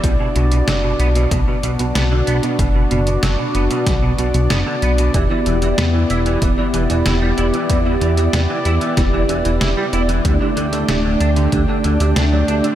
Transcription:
0.04 analog synth bass B1, clean electric guitar B2, analog synth pad B3 D4 F#4 D5, kick, closed hi-hat
0.20 clean electric guitar B2
0.36 analog synth bass B1, clean electric guitar B2, closed hi-hat
0.52 clean electric guitar B2, closed hi-hat
0.67 analog synth bass F#1, clean electric guitar F#3, snare, closed hi-hat
0.84 clean electric guitar B2
0.99 analog synth bass B1, clean electric guitar B3, closed hi-hat
1.15 clean electric guitar B2, closed hi-hat
1.31 analog synth bass B1, clean electric guitar B2, kick, closed hi-hat
1.47 clean electric guitar B2
1.63 analog synth bass B1, clean electric guitar B2, closed hi-hat
1.79 analog synth bass B1, clean electric guitar B2, closed hi-hat
1.95 analog synth bass B1, clean electric guitar B3, snare, closed hi-hat
2.11 clean electric guitar D3
2.27 analog synth bass B1, clean electric guitar B3, closed hi-hat
2.43 clean electric guitar B2, closed hi-hat
2.59 analog synth bass F#1, clean electric guitar B2, kick, closed hi-hat
2.75 clean electric guitar B2
2.91 analog synth bass F#1, clean electric guitar B2, closed hi-hat
3.07 clean electric guitar B2, closed hi-hat
3.23 analog synth bass F#1, clean electric guitar F#3, snare, closed hi-hat
3.39 clean electric guitar B2
3.55 analog synth bass F#1, clean electric guitar B3, closed hi-hat
3.71 clean electric guitar B2, closed hi-hat
3.87 analog synth bass B1, clean electric guitar B2, kick, snare, closed hi-hat
4.03 clean electric guitar B2
4.18 analog synth bass B1, clean electric guitar B2, closed hi-hat
4.34 analog synth bass B1, clean electric guitar B2, closed hi-hat
4.50 analog synth bass F#1, clean electric guitar B3, snare, closed hi-hat
4.66 clean electric guitar D3
4.82 analog synth bass B1, clean electric guitar B3, closed hi-hat
4.98 clean electric guitar B2, closed hi-hat
5.14 analog synth bass E1, clean electric guitar E3, tine electric piano B3 E4 G4 D5, analog synth pad E4 G4, kick, closed hi-hat
5.30 clean electric guitar E3, tine electric piano B3 E4 G4 D5
5.46 analog synth bass E1, clean electric guitar E3, closed hi-hat
5.62 clean electric guitar E3, tine electric piano B3 E4 G4 D5, closed hi-hat
5.78 analog synth bass E2, clean electric guitar B3, tine electric piano B3 E4 G4 D5, snare, closed hi-hat
5.94 clean electric guitar E3
6.10 analog synth bass E1, tine electric piano B3 E4 G4 D5, clean electric guitar E4, closed hi-hat
6.26 clean electric guitar E3, closed hi-hat
6.42 analog synth bass E1, clean electric guitar E3, tine electric piano B3 E4 G4 D5, kick, closed hi-hat
6.58 clean electric guitar E3, tine electric piano B3 E4 G4 D5
6.74 analog synth bass E1, clean electric guitar E3, closed hi-hat
6.90 analog synth bass E1, clean electric guitar E3, tine electric piano B3 E4 G4 D5, closed hi-hat
7.06 analog synth bass E1, clean electric guitar E4, snare, closed hi-hat
7.22 clean electric guitar G3, tine electric piano B3 E4 G4 D5
7.38 analog synth bass E1, tine electric piano B3 E4 G4 D5, clean electric guitar E4, closed hi-hat
7.54 clean electric guitar E3, closed hi-hat
7.70 analog synth bass E2, clean electric guitar E3, tine electric piano B3 E4 G4 D5, kick, closed hi-hat
7.86 clean electric guitar E3, tine electric piano B3 E4 G4 D5
8.01 analog synth bass E2, clean electric guitar E3, closed hi-hat
8.17 clean electric guitar E3, tine electric piano B3 E4 G4 D5, closed hi-hat
8.33 analog synth bass E2, clean electric guitar B3, tine electric piano B3 E4 G4 D5, snare, closed hi-hat
8.49 clean electric guitar E3
8.65 analog synth bass E2, tine electric piano B3 E4 G4 D5, clean electric guitar E4, closed hi-hat
8.81 clean electric guitar E3, closed hi-hat
8.97 analog synth bass E1, clean electric guitar E3, tine electric piano B3 E4 G4 D5, kick, snare, closed hi-hat
9.13 clean electric guitar E3, tine electric piano B3 E4 G4 D5
9.29 analog synth bass E1, clean electric guitar E3, closed hi-hat
9.45 analog synth bass E1, clean electric guitar E3, tine electric piano B3 E4 G4 D5, closed hi-hat
9.61 analog synth bass E1, clean electric guitar E4, snare, closed hi-hat
9.77 clean electric guitar G3, tine electric piano B3 E4 G4 D5
9.93 analog synth bass E1, tine electric piano B3 E4 G4 D5, clean electric guitar E4, closed hi-hat
10.09 clean electric guitar E3, closed hi-hat
10.25 analog synth bass D2, clean electric guitar D3, analog synth pad A3 D4 G5, tine electric piano A3 D4 G4 D5, kick, closed hi-hat
10.41 clean electric guitar D3, tine electric piano A3 D4 G4 D5
10.57 analog synth bass D2, clean electric guitar D3, closed hi-hat
10.72 clean electric guitar D3, tine electric piano A3 D4 G4 D5, closed hi-hat
10.88 analog synth bass D1, clean electric guitar A3, tine electric piano A3 D4 G4 D5, snare, closed hi-hat
11.05 clean electric guitar D3
11.20 analog synth bass D2, tine electric piano A3 D4 G4 D5, clean electric guitar D4, closed hi-hat
11.36 clean electric guitar D3, closed hi-hat
11.52 analog synth bass D2, clean electric guitar D3, tine electric piano A3 D4 G4 D5, kick, closed hi-hat
11.68 clean electric guitar D3, tine electric piano A3 D4 G4 D5
11.84 analog synth bass D2, clean electric guitar D3, closed hi-hat
12.00 analog synth bass D2, clean electric guitar D3, tine electric piano A3 D4 G4 D5, closed hi-hat
12.16 analog synth bass D2, clean electric guitar D4, snare, closed hi-hat
12.32 clean electric guitar F#3, tine electric piano A3 D4 G4 D5
12.48 analog synth bass D2, tine electric piano A3 D4 G4 D5, clean electric guitar D4, closed hi-hat
12.64 clean electric guitar D3, closed hi-hat

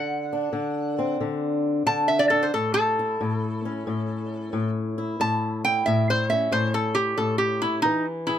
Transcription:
Already playing: steel-string acoustic guitar D3, resonator guitar played with a steel bar F#5
0.33 steel-string acoustic guitar D4
0.53 steel-string acoustic guitar D3
0.99 steel-string acoustic guitar C4
1.21 steel-string acoustic guitar D3
1.86 steel-string acoustic guitar D3, resonator guitar played with a steel bar A5
2.08 resonator guitar played with a steel bar E5
2.19 resonator guitar played with a steel bar D5
2.30 steel-string acoustic guitar D4, resonator guitar played with a steel bar A4
2.43 resonator guitar played with a steel bar C5
2.54 steel-string acoustic guitar A2, resonator guitar played with a steel bar A4
2.74 resonator guitar played with a steel bar A4
2.99 steel-string acoustic guitar E4
3.21 steel-string acoustic guitar A2
3.65 steel-string acoustic guitar C#4
3.87 steel-string acoustic guitar A2
4.53 steel-string acoustic guitar A2
4.98 steel-string acoustic guitar E4
5.20 steel-string acoustic guitar A2, resonator guitar played with a steel bar A5
5.65 steel-string acoustic guitar E4, resonator guitar played with a steel bar G5
5.86 steel-string acoustic guitar A2, resonator guitar played with a steel bar E5
6.10 resonator guitar played with a steel bar C5
6.30 steel-string acoustic guitar C#4, resonator guitar played with a steel bar E5
6.52 steel-string acoustic guitar A2, resonator guitar played with a steel bar C5
6.74 resonator guitar played with a steel bar A4
6.95 resonator guitar played with a steel bar G4
7.18 steel-string acoustic guitar A2, resonator guitar played with a steel bar A4
7.38 resonator guitar played with a steel bar G4
7.62 resonator guitar played with a steel bar E4, steel-string acoustic guitar E4
7.82 steel-string acoustic guitar E3, resonator guitar played with a steel bar D#4
8.27 resonator guitar played with a steel bar E4, steel-string acoustic guitar G#4

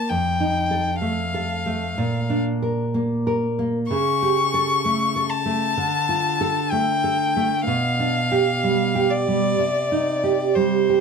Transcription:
Already playing: nylon-string guitar A#3, violin A5
0.09 nylon-string guitar F2, violin G5
0.40 nylon-string guitar D#4
0.71 nylon-string guitar A4
1.01 nylon-string guitar A3, violin F5
1.34 nylon-string guitar A4
1.66 nylon-string guitar A3
1.98 nylon-string guitar A#2
2.30 nylon-string guitar D4
2.62 nylon-string guitar A#4
2.94 nylon-string guitar A#3
3.27 nylon-string guitar A#4
3.59 nylon-string guitar A#3
3.90 nylon-string guitar C#3, violin C#6
4.22 nylon-string guitar G4
4.54 nylon-string guitar A4
4.85 nylon-string guitar A3
5.16 nylon-string guitar A4
5.30 violin A5
5.46 nylon-string guitar A3
5.77 nylon-string guitar D3
6.09 nylon-string guitar F4
6.41 nylon-string guitar A4
6.71 nylon-string guitar A3, violin G5
7.04 nylon-string guitar A4
7.36 nylon-string guitar A3
7.65 nylon-string guitar B2, violin F5
7.99 nylon-string guitar D4
8.32 nylon-string guitar G4
8.63 nylon-string guitar G3
8.95 nylon-string guitar G4
9.10 violin D5
9.27 nylon-string guitar G3
9.59 nylon-string guitar C3
9.92 nylon-string guitar D#4
10.24 nylon-string guitar G4
10.55 nylon-string guitar G3, violin C5
10.89 nylon-string guitar G4

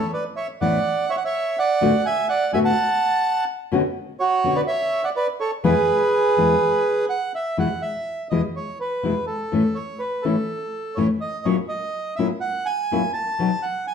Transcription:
Already playing: bandoneon A4 C#5
0.13 bandoneon B4 D5
0.36 bandoneon C#5 E5
0.61 nylon-string guitar A2 E3 B3 C#4 E4, bandoneon D5 F#5
1.10 bandoneon C#5 E5
1.17 bandoneon F#5
1.25 bandoneon C#5 E5
1.59 bandoneon D5 F#5
1.81 nylon-string guitar A2 D3 A3 B3 F#4
2.06 bandoneon E5 G#5
2.29 bandoneon D5 F#5
2.53 nylon-string guitar A2 D3 A3 B3 F#4, bandoneon E5 G#5
2.65 bandoneon F#5 A5
3.72 nylon-string guitar B2 D3 B3 C#4 F#4
4.20 bandoneon F#4 C#5
4.44 nylon-string guitar B2 D3 B3 C#4 F#4
4.55 bandoneon B4 D5
4.67 bandoneon C#5 E5
5.04 bandoneon D5 F#5
5.16 bandoneon B4 D5
5.40 bandoneon A4 C#5
5.64 nylon-string guitar E2 B2 E3 G#3 B3 E4, bandoneon G#4 B4
6.37 nylon-string guitar E2 B2 E3 G#3 B3 E4
7.10 bandoneon F#5
7.35 bandoneon E5
7.57 nylon-string guitar E2 B2 E3 G#3 B3 E4, bandoneon F#5
7.82 bandoneon E5
8.30 nylon-string guitar E2 B2 E3 G#3 B3 E4, bandoneon D#5
8.56 bandoneon C#5
8.81 bandoneon B4
9.03 nylon-string guitar E2 B2 E3 G#3 B3 E4
9.27 bandoneon A4
9.52 nylon-string guitar A2 E3 A3 C#4 E4
9.75 bandoneon C#5
9.99 bandoneon B4
10.22 nylon-string guitar A2 E3 A3 C#4 E4, bandoneon A4
10.95 nylon-string guitar A2 E3 A3 C#4 E4, bandoneon C#5
11.21 bandoneon D#5
11.45 nylon-string guitar A#2 F#3 A#3 C#4 E4, bandoneon C#5
11.69 bandoneon D#5
12.16 nylon-string guitar A#2 F#3 A#3 C#4 E4, bandoneon E5
12.41 bandoneon F#5
12.66 bandoneon G#5
12.91 nylon-string guitar A#2 F#3 A#3 C#4 E4
13.14 bandoneon A5
13.39 nylon-string guitar B2 F#3 B3 D#4 F#4
13.62 bandoneon F#5
13.87 bandoneon G#5

